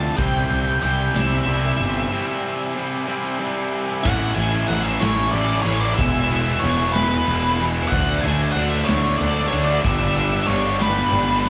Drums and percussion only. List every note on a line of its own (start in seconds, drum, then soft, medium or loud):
0.18 kick loud
0.18 closed hi-hat medium
0.51 closed hi-hat medium
0.83 closed hi-hat medium
1.15 snare loud
1.15 closed hi-hat loud
1.47 closed hi-hat medium
1.80 closed hi-hat medium
4.05 kick loud
4.05 crash loud
4.37 ride medium
4.69 ride medium
5.02 snare loud
5.02 ride loud
5.34 ride medium
5.66 ride medium
5.98 kick loud
5.98 ride loud
6.31 ride medium
6.63 ride medium
6.95 snare loud
6.95 ride loud
7.27 ride medium
7.59 ride medium
7.91 kick loud
7.91 ride loud
8.24 ride medium
8.56 ride medium
8.88 snare loud
8.88 ride loud
9.20 ride medium
9.52 ride medium
9.84 kick loud
9.84 ride loud
10.17 ride medium
10.49 ride medium
10.81 snare loud
10.81 ride loud
11.13 ride medium
11.45 ride medium